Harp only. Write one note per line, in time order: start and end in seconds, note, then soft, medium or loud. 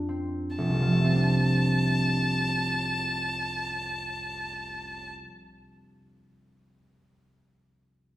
0.00 0.65 F2 soft
0.00 0.65 G#3 soft
0.00 0.45 D4 soft
0.00 0.65 G4 soft
0.09 1.03 C4 soft
0.58 5.09 F1 soft
0.69 5.21 C2 soft
0.81 5.32 F3 soft
0.92 5.44 A3 soft
1.04 5.55 C4 soft
1.16 5.67 D4 soft